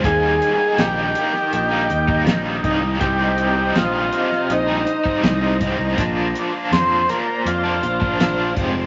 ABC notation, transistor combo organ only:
X:1
M:4/4
L:1/8
Q:1/4=81
K:Cm
V:1 name="Transistor combo organ"
A2 G2 G2 z E | G2 F2 E3 z | z2 c B F3 z |]